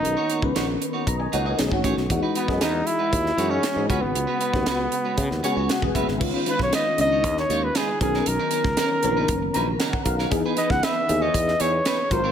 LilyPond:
<<
  \new Staff \with { instrumentName = "Flugelhorn" } { \time 4/4 \key cis \dorian \tempo 4 = 117 dis'4 r2. | r8 b8 dis'8 e'4~ e'16 cis'8. cis'16 b16~ | b2.~ b8 r8 | \key cis \mixolydian r8 b'16 cis''16 dis''8 dis''8. cis''8 b'16 gis'8 gis'8 |
ais'2. r4 | r8 dis''16 fis''16 e''8. dis''8. cis''4 bis'8 | }
  \new Staff \with { instrumentName = "Clean electric guitar" } { \time 4/4 \key cis \dorian r16 <ais dis' fis' cis''>16 <ais dis' fis' cis''>16 r16 <ais dis' fis' cis''>16 r8 <ais dis' fis' cis''>16 r8 <ais dis' fis' dis''>16 <ais dis' fis' dis''>16 r8 <a dis' gis' cis''>16 r16 | r16 <gis dis' fis' b'>16 <gis dis' fis' b'>16 r16 <gis dis' fis' b'>16 r8 <gis dis' fis' b'>16 r8 <gis dis' fis' cis''>16 <gis dis' fis' cis''>16 r8 <gis cis' fis' b'>16 r16 | r16 <gis cis' fis' b'>16 <gis cis' fis' b'>16 r16 <gis cis' fis' b'>16 r8 <gis cis' fis' b'>16 r8 <gis cis' fis' cis''>16 <gis cis' fis' cis''>16 r8 <gis cis' fis' b'>16 r16 | \key cis \mixolydian r16 <gis dis' eis' b'>16 <gis dis' eis' b'>16 r16 <gis dis' eis' b'>16 r8 <gis dis' eis' cis''>16 r8 <gis dis' eis' cis''>16 r16 <gis dis' eis' b'>16 r8 <fis cis' dis' ais'>16 |
r16 <fis cis' dis' ais'>16 <fis cis' dis' ais'>16 r16 <fis cis' dis' ais'>16 r8 <fis cis' dis' b'>16 r8 <fis cis' dis' b'>16 r16 <fis cis' dis' ais'>16 r8 <fis cis' dis' ais'>16 | r16 <b dis' gis' b'>16 <b dis' gis' b'>16 r16 <b dis' gis' b'>16 r8 <b dis' gis' cis''>16 r8 <b dis' gis' cis''>16 r16 <b dis' gis' b'>16 r8 <fis bis eis' ais'>16 | }
  \new Staff \with { instrumentName = "FM electric piano" } { \time 4/4 \key cis \dorian r2 <dis'' ais''>16 <dis'' gis''>16 <cis'' fis''>16 <ais' dis''>8 r8. | r1 | r2 r8 gis''8 fis''8 e''8 | \key cis \mixolydian r1 |
r2 r8 ais''8 fis''8 eis''8 | r1 | }
  \new Staff \with { instrumentName = "FM electric piano" } { \time 4/4 \key cis \dorian <dis b cis' ais'>8 r16 <dis b cis' b'>4. r8. <dis a cis' gis'>16 <dis a cis' fis'>8. | <e gis dis' fis'>8. <e gis gis' dis''>4. r16 <e gis dis' gis'>8. <e gis dis' gis'>16 <cis gis b fis'>8~ | <cis gis b fis'>8 r16 <cis gis b fis'>4. r16 <cis gis b fis'>8. <cis gis b gis'>8. | \key cis \mixolydian <dis b cis' eis'>8 <dis b cis' eis'>8. r16 <dis b cis' d' dis'>4.~ <dis b cis' d' dis'>16 r16 <dis b cis' ais'>8~ |
<dis b cis' ais'>8. r16 <dis b cis' ais'>8 <cis dis b cis' ais'>4.~ <cis dis b cis' ais'>16 r8. | <e b dis' gis'>8 <e b dis' b'>8. r16 <e b dis' gis'>4.~ <e b dis' gis'>16 r16 <fis bis eis' ais'>8 | }
  \new Staff \with { instrumentName = "Fretless electric bass" } { \clef bass \time 4/4 \key cis \dorian b,,16 r8 cis,16 ais,,8 r8 b,,8 cis,8 b,,16 gis,,16 a,,16 b,,16 | e,16 r8 fis,16 e,8 r8 dis,8 fis,8 r16 gis,16 cis,16 gis,,16 | cis,16 r8 dis,16 cis,8 r8 cis16 dis,16 r16 cis,16 r16 e,,16 fis,,16 gis,,16 | \key cis \mixolydian cis,16 r8 b,,16 r8 cis,8 dis,8 dis,8 r8 b,,8 |
b,,16 r8 cis,16 r8 ais,,8 fis,,8 ais,,8 r8 b,,8 | e,16 r8 cis,16 r8 dis,8 e,8 e,8 r8 gis,,8 | }
  \new DrumStaff \with { instrumentName = "Drums" } \drummode { \time 4/4 hh8 hh16 bd16 <hh sn>8 hh8 <hh bd>8 hh8 <hh sn>16 bd16 <hh bd>16 sn16 | <hh bd>8 hh16 <bd sn>16 <hh sn>8 hh8 <hh bd>16 sn16 hh8 <hh sn>8 <hh bd>8 | hh8 hh16 <bd sn>16 <hh sn>8 hh8 <hh bd>16 sn16 hh8 <hh sn>16 bd16 <hh bd>16 sn16 | <cymc bd>8 hh16 <bd sn>16 <hh sn>8 hh8 <hh bd>16 sn16 hh8 <hh sn>8 <hh bd>16 sn16 |
hh8 hh16 <bd sn>16 <hh sn>8 hh8 <hh bd>8 hh8 <hh sn>16 bd16 <hh bd>16 sn16 | <hh bd>8 hh16 <bd sn>16 <hh sn>8 hh8 <hh bd>16 sn16 hh8 <hh sn>8 <hh bd>8 | }
>>